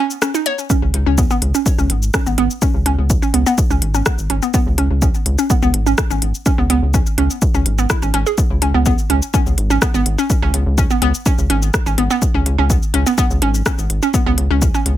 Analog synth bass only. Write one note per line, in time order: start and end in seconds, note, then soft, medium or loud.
0.82 0.92 C#2 medium
0.94 1.05 C#2 loud
1.06 1.27 C#2 medium
1.42 1.52 C#2 loud
1.78 1.88 C#2 medium
1.90 2.10 G#1 medium
2.26 2.36 G#1 medium
2.38 2.48 G#1 medium
2.74 2.84 C#2 loud
2.86 2.96 C#2 loud
2.98 3.19 C#2 medium
3.34 3.44 C#2 loud
3.70 3.80 C#2 loud
3.82 4.02 G#1 medium
4.18 4.28 G#1 medium
4.30 4.40 G#1 medium
4.66 4.76 C#2 loud
4.78 4.89 C#2 loud
4.91 5.11 C#2 medium
5.26 5.37 C#2 loud
5.62 5.72 C#2 loud
5.74 5.94 G#1 medium
6.10 6.20 G#1 medium
6.22 6.33 G#1 medium
6.58 6.68 C#2 loud
6.70 6.81 C#2 loud
6.82 7.03 C#2 medium
7.18 7.28 C#2 loud
7.54 7.64 C#2 medium
7.66 7.86 G#1 medium
8.02 8.12 G#1 medium
8.14 8.25 G#1 medium
8.50 8.60 C#2 loud
8.62 8.72 C#2 loud
8.74 8.95 C#2 medium
9.10 9.21 C#2 loud
9.46 9.56 C#2 loud
9.58 9.78 G#1 medium
9.94 10.04 G#1 medium
10.06 10.17 G#1 medium
10.42 10.52 C#2 loud
10.54 10.65 C#2 loud
10.66 10.87 C#2 medium
11.02 11.12 C#2 loud
11.38 11.48 C#2 medium
11.50 11.70 G#1 medium
11.86 11.96 G#1 medium
11.98 12.09 G#1 medium
12.34 12.44 C#2 loud
12.46 12.57 C#2 loud
12.58 12.79 C#2 medium
12.94 13.05 C#2 loud
13.30 13.40 C#2 loud
13.42 13.62 G#1 medium
13.78 13.88 G#1 medium
13.90 14.00 G#1 medium
14.26 14.36 C#2 loud
14.38 14.48 C#2 loud
14.50 14.71 C#2 medium
14.86 14.96 C#2 loud